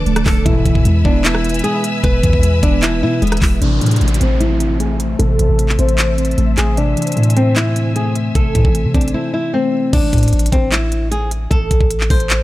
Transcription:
Already playing: D3 F3 A3 D4 A4 B4 D5 A5 D6
0.06 D1 A3, closed hi-hat
0.16 cross-stick, closed hi-hat
0.26 D1 A4, kick, clap, open hi-hat
0.46 E1 G#2 B2 E3 E4 B4 E5 G#5 E6, kick, closed hi-hat
0.66 E1 E3, kick, closed hi-hat
0.75 kick
0.85 E2 G#3, closed hi-hat
1.05 E1 B3 D4, kick
1.24 E4 B4, clap, closed hi-hat
1.35 cross-stick
1.44 B3, closed hi-hat
1.49 closed hi-hat
1.54 closed hi-hat
1.59 closed hi-hat
1.64 G#3 G#4, closed hi-hat
1.84 closed hi-hat
2.04 E1 B2 B4, kick, closed hi-hat
2.23 E2 E3, kick, closed hi-hat
2.33 kick
2.43 G#3, closed hi-hat
2.62 E1 B3 D4, kick, closed hi-hat
2.82 E4 B4, clap, closed hi-hat
3.02 B2 B3 E4
3.22 E1 G#3 B3, closed hi-hat
3.27 closed hi-hat
3.32 cross-stick, closed hi-hat
3.37 closed hi-hat
3.42 E1, kick, clap, open hi-hat
3.61 A1 C3 D4 C5 E5 A5 E6, closed hi-hat, downlifter
3.81 A2 E3, closed hi-hat
3.86 closed hi-hat
3.91 closed hi-hat
3.96 closed hi-hat
4.01 A1 A3, closed hi-hat
4.08 closed hi-hat
4.14 closed hi-hat
4.20 A1 C4, closed hi-hat
4.40 E4 C5, closed hi-hat
4.60 C4, closed hi-hat
4.80 A3 G#4, closed hi-hat
5.00 closed hi-hat
5.19 A1 C3 A4, closed hi-hat
5.39 A1 E3, closed hi-hat
5.49 A1
5.59 A3, closed hi-hat
5.69 clap
5.79 A1 C4 C5, closed hi-hat
5.89 closed hi-hat
5.98 C5, clap, closed hi-hat
6.18 C4, closed hi-hat
6.25 closed hi-hat
6.31 closed hi-hat
6.38 A1 A3, closed hi-hat
6.58 A1 G#4, clap, closed hi-hat
6.77 C3 D4 G#5, closed hi-hat
6.97 E3, closed hi-hat
7.02 closed hi-hat
7.07 closed hi-hat
7.12 closed hi-hat
7.17 A2 A3, closed hi-hat
7.23 closed hi-hat
7.30 closed hi-hat
7.37 C4, closed hi-hat
7.56 E4 C5, clap, closed hi-hat
7.76 C4, closed hi-hat
7.95 A3 G#4, closed hi-hat
8.15 closed hi-hat
8.35 A1 C3 A4, kick, closed hi-hat
8.54 A2 E3, kick, closed hi-hat
8.65 A1, kick
8.75 A3, closed hi-hat
8.85 C3
8.94 A1 C4 D4, kick, closed hi-hat
9.01 closed hi-hat
9.08 closed hi-hat
9.14 E4 C5
9.33 C4 E4
9.54 A3 C4
9.93 A1 D4, kick, closed hi-hat, crash, impact
10.13 A2, kick, closed hi-hat
10.18 closed hi-hat
10.23 closed hi-hat
10.28 closed hi-hat
10.33 A1, closed hi-hat
10.39 closed hi-hat
10.46 closed hi-hat
10.52 A1 C4, kick, closed hi-hat
10.72 E4, clap, closed hi-hat
10.92 closed hi-hat
11.11 G#4, closed hi-hat
11.31 closed hi-hat
11.51 A1 A4, kick, closed hi-hat
11.71 A1, kick, closed hi-hat
11.81 A1, kick
11.91 closed hi-hat
12.00 clap
12.10 A1 C5, kick, closed hi-hat, open hi-hat
12.20 closed hi-hat
12.30 clap, closed hi-hat

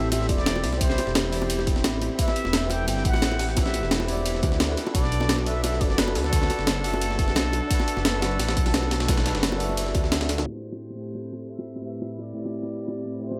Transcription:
Already playing: A1 C4 E4 G4 A4 C5 E5 B5
0.12 E5, closed hi-hat, ride, ride bell, high bongo
0.21 snare
0.29 E1 D5, kick, closed hi-hat, ride, high bongo
0.38 snare
0.46 snare, closed hi-hat, ride, ride bell
0.55 ride, high bongo
0.64 C2, snare, closed hi-hat, open hi-hat
0.73 snare, high bongo
0.78 C4 E4 C5, kick, closed hi-hat, ride, ride bell
0.82 G4 C5
0.90 snare
0.98 closed hi-hat, ride, high bongo
1.07 E1, snare
1.15 snare, closed hi-hat, ride, ride bell, high bongo
1.29 C4 E4, snare, open hi-hat, ride
1.34 G4 D5
1.42 high bongo
1.50 closed hi-hat, ride, ride bell
1.59 snare, high bongo
1.67 kick, closed hi-hat, ride
1.76 snare
1.84 A1, snare, closed hi-hat, ride, ride bell, high bongo
2.02 closed hi-hat, high bongo
2.16 C4 E4 E5, kick, closed hi-hat, ride, ride bell
2.20 G4 B4
2.28 snare, high bongo
2.36 closed hi-hat, ride
2.45 E1, snare, high bongo
2.53 snare, closed hi-hat, ride, ride bell
2.67 C4 E4 G5, closed hi-hat, ride, high bongo
2.72 G4 A4
2.88 G1 G5, closed hi-hat, ride, ride bell, high bongo
2.97 snare
3.05 A1 F#5, kick, closed hi-hat, ride
3.13 snare, high bongo
3.22 snare, closed hi-hat, ride, ride bell
3.31 ride, high bongo
3.39 snare, closed hi-hat, open hi-hat
3.49 snare
3.53 C4 E4 E5, kick, closed hi-hat, ride, ride bell
3.58 G4 B4, high bongo
3.66 snare
3.74 closed hi-hat, ride, high bongo
3.83 E1, snare
3.91 snare, closed hi-hat, ride, ride bell
4.00 high bongo
4.05 C4 E4, open hi-hat, ride
4.10 G4 D5
4.17 high bongo
4.26 closed hi-hat, ride, ride bell
4.35 snare
4.43 D2, kick, closed hi-hat, ride, high bongo
4.52 snare
4.60 snare, closed hi-hat, ride, ride bell, high bongo
4.68 D4 F#4 A4 B4
4.77 D4 F#4 A4, snare, closed hi-hat, ride
4.86 ride, high bongo
4.91 B1 D4 F#4 D5, kick, closed hi-hat, ride, ride bell, high bongo
4.96 A4 B4
5.04 snare
5.12 closed hi-hat, ride
5.20 snare, high bongo
5.29 snare, closed hi-hat, ride, ride bell
5.38 high bongo
5.43 D4 F#4 E5, closed hi-hat, ride
5.48 A4 B4
5.64 E5, closed hi-hat, ride, ride bell, high bongo
5.73 snare
5.81 F#1 D5, kick, closed hi-hat, ride, high bongo
5.90 snare
5.98 B4, snare, closed hi-hat, ride, ride bell
6.07 ride, high bongo
6.15 D2 A4, snare, closed hi-hat, open hi-hat
6.24 snare, high bongo
6.29 D4 F#4, kick, closed hi-hat, ride, ride bell
6.34 A4 B4
6.42 snare
6.50 closed hi-hat, ride, high bongo
6.59 F#1, snare
6.67 snare, closed hi-hat, ride, ride bell, high bongo
6.81 D4 F#4, snare, open hi-hat, ride
6.85 A4 E5
6.94 high bongo
7.02 closed hi-hat, ride, ride bell
7.10 snare, high bongo
7.19 kick, closed hi-hat, ride
7.28 snare
7.36 B1, snare, closed hi-hat, ride, ride bell, high bongo
7.53 B4, closed hi-hat, high bongo
7.67 D4 F#4, kick, closed hi-hat, ride, ride bell
7.72 A4 B4
7.80 snare, high bongo
7.88 closed hi-hat, ride
7.97 F#1, snare, high bongo
8.05 snare, closed hi-hat, ride, ride bell
8.19 D4 F#4, snare, closed hi-hat, ride, high bongo
8.24 A4 B4
8.31 ride
8.39 A1, snare, closed hi-hat, open hi-hat, ride bell, high bongo
8.49 snare, ride
8.57 B1, kick, closed hi-hat, ride
8.66 snare, open hi-hat, high bongo
8.74 snare, closed hi-hat, ride, ride bell
8.82 ride, high bongo
8.91 snare, closed hi-hat, ride
9.00 snare, ride
9.05 D4 F#4, kick, snare, closed hi-hat, ride, ride bell
9.10 A4 B4, high bongo
9.17 snare, ride
9.26 snare, closed hi-hat, ride, high bongo
9.35 F#1, snare, ride
9.43 snare, closed hi-hat, ride, ride bell
9.52 high bongo
9.57 D4 F#4, snare, open hi-hat, ride
9.61 A4 E5
9.69 high bongo
9.77 closed hi-hat, ride, ride bell
9.87 snare
9.95 D2, kick, closed hi-hat, ride, high bongo
10.04 snare
10.12 snare, closed hi-hat, ride, ride bell, high bongo
10.21 snare, ride
10.29 snare, closed hi-hat, ride
10.38 snare, ride, high bongo
10.43 A2 C4 E4 G4 C5 B5, high bongo
10.48 G4 C5
10.72 high bongo
10.90 high bongo
10.95 A2 C4 E4
11.00 G4 A4
11.15 high bongo
11.33 high bongo
11.50 E5
11.59 high bongo
11.67 open hi-hat
11.76 high bongo
11.81 A2 C4 E4 E5
11.86 G4 B4
12.02 high bongo
12.19 D5, high bongo
12.33 A2 C4 E4
12.38 G4 D5
12.45 high bongo
12.63 high bongo
12.88 high bongo
13.05 open hi-hat, high bongo
13.19 A2 C4 E4 C5
13.24 G4 C5
13.31 high bongo

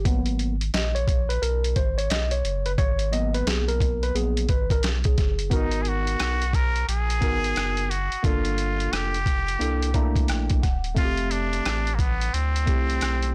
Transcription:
0.05 G#1 F#3 A#3 B3, kick, closed hi-hat
0.26 closed hi-hat
0.39 closed hi-hat
0.61 closed hi-hat
0.74 A#1 D#5, snare, closed hi-hat
0.95 C#5, closed hi-hat
1.08 kick, closed hi-hat
1.29 B4, closed hi-hat
1.42 B1 A#4, closed hi-hat
1.64 closed hi-hat
1.76 G#1 C5, kick, closed hi-hat
1.98 C#5, closed hi-hat
2.10 B1 D#5, snare, closed hi-hat
2.31 C#5, closed hi-hat
2.44 F#1, closed hi-hat
2.66 B4, closed hi-hat
2.78 G#1 C#5, kick, closed hi-hat
2.99 closed hi-hat
3.11 F#3 A#3 B3 D#5, closed hi-hat
3.34 B4, closed hi-hat
3.46 B1 G#4, snare, closed hi-hat
3.68 A#4, closed hi-hat
3.80 kick, closed hi-hat
4.03 B4, closed hi-hat
4.14 A#1 F#3 A#3 B3 G#4, closed hi-hat
4.37 closed hi-hat
4.49 G#1 B4, kick, closed hi-hat
4.70 A#4, kick, closed hi-hat
4.83 B1, snare, closed hi-hat
5.04 G#4, kick, closed hi-hat
5.18 F#1, kick, snare, closed hi-hat
5.39 closed hi-hat
5.50 G#1 B3 D#4 F#4 A#4, kick, closed hi-hat
5.55 D#4
5.71 closed hi-hat
5.82 G#4, closed hi-hat
5.88 F#4
6.07 closed hi-hat
6.20 B1, cross-stick, closed hi-hat
6.42 closed hi-hat
6.53 A#4, kick, closed hi-hat
6.76 closed hi-hat
6.88 A#1 G#4, closed hi-hat
7.10 closed hi-hat
7.21 G#1 B3 D#4 F#4 A#4, kick, closed hi-hat
7.44 closed hi-hat
7.56 F#1, cross-stick, closed hi-hat
7.77 closed hi-hat
7.90 F#4, closed hi-hat
8.12 F#1, closed hi-hat
8.23 G1 A#3 D4 F4 A4, kick, closed hi-hat
8.45 closed hi-hat
8.58 closed hi-hat
8.80 closed hi-hat
8.92 F1 G4, cross-stick, closed hi-hat
9.14 closed hi-hat
9.26 kick, closed hi-hat
9.48 closed hi-hat
9.59 C2 A#3 D4 E4 A4, closed hi-hat
9.82 closed hi-hat
9.94 A3 A#3 D4 E4 A#5, kick, closed hi-hat
10.16 kick, closed hi-hat
10.28 A#1 G5, cross-stick, closed hi-hat
10.50 kick, closed hi-hat
10.63 D1 F#5, kick, cross-stick, closed hi-hat
10.84 closed hi-hat
10.95 F1 A3 C4 F4 E5, kick, closed hi-hat
11.05 G4
11.17 closed hi-hat
11.31 D4, closed hi-hat
11.53 closed hi-hat
11.65 A1, cross-stick, closed hi-hat
11.87 closed hi-hat
11.95 A#3, kick
12.00 B3, closed hi-hat
12.21 closed hi-hat
12.34 D2 C4, closed hi-hat
12.56 closed hi-hat
12.66 C2 A3 C4 E4 G4, kick, closed hi-hat
12.90 closed hi-hat
13.01 B1, cross-stick, closed hi-hat
13.22 closed hi-hat

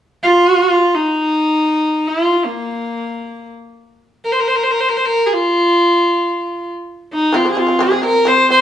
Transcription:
0.23 F4
0.95 D#4
2.07 F4
2.46 A#3
4.25 A#4
4.32 C5
4.40 A#4
4.48 C5
4.56 A#4
4.63 C5
4.71 A#4
4.81 C5
4.89 A#4
4.97 C5
5.05 A#4
5.26 G#4
5.33 F4
7.13 D#4
7.32 F3 C4 F4
7.45 F3 C4
7.51 G#4
7.55 F3 C4 F4
7.67 F3 C4
7.79 F3 C4 G#4
7.90 F3 C4
8.02 F3 C4 A#4
8.25 F3 C4 C5
8.49 F3 C4 C5

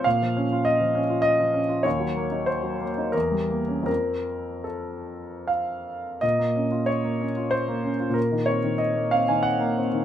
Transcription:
0.04 A#2 F5
0.22 F3
0.37 C#4
0.52 F4
0.65 D#5
0.81 F3
0.95 C#4
1.10 F4
1.22 D#5
1.40 F3
1.54 C#4
1.69 F4
1.83 D#2 C#5
2.00 F#3
2.16 A#3
2.31 D#4
2.46 C5
2.63 F#3
2.80 A#3
2.98 D#4
3.12 E2 A#4
3.32 G3
3.50 A#3
3.68 C#4
3.83 F2 F3 C4 A#4
4.64 A4
5.47 F5
6.21 A#2 D#5
6.39 A#3
6.56 C#4
6.72 F4
6.86 C#5
7.05 A#3
7.21 C#4
7.37 F4
7.51 C5
7.68 A#3
7.84 C#4
8.00 F4
8.10 A#2
8.14 A#4
8.32 D#3
8.46 C4 C#5
8.64 D#3
8.78 D#5
8.96 A#3
9.11 C4 F5
9.28 D#3 G#5
9.43 F#5
9.60 A#3
9.78 C4
9.93 D#3

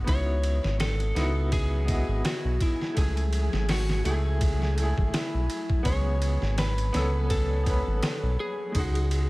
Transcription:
0.04 C#2 F#3 B3 D#4 G#5, kick, ride
0.09 E4 F#4 C#5
0.43 ride
0.64 G#1, snare
0.80 A4, snare, ride
1.00 ride
1.15 C#2 B3 D#4 E4 F#4, snare, ride
1.52 G#4, kick, ride
1.85 B3 E4 D#5, kick, ride
1.92 F#4
2.08 G#1
2.25 F#4, snare, ride
2.44 B1
2.60 E4, kick, ride
2.81 snare
2.94 C#2 A3 E4 G#4, kick, ride
3.01 G#4
3.17 ride
3.33 ride
3.53 G#1, snare
3.69 F#4, snare, open hi-hat
3.89 snare
4.04 C#2 A3 E4 G#4, ride
4.41 kick, ride
4.62 snare
4.75 A3 E4, ride
4.82 G#4
4.98 G#1, kick
5.14 E4, snare, ride
5.34 B1
5.50 ride
5.70 kick
5.83 C#2 B3 C#4 C#5, kick, ride
5.89 G#4
6.22 ride
6.42 G#1, snare
6.58 B4, snare, ride
6.78 ride
6.93 C#2 B3 C#4 A4, snare, ride
7.30 A4, kick, ride
7.63 B3 C#4, kick, ride
7.70 B4
7.87 G#1
8.03 snare, ride
8.23 B1
8.40 G#4
8.72 C#2 G#3 D#4, kick, ride
8.79 F#4
8.95 ride
9.11 ride

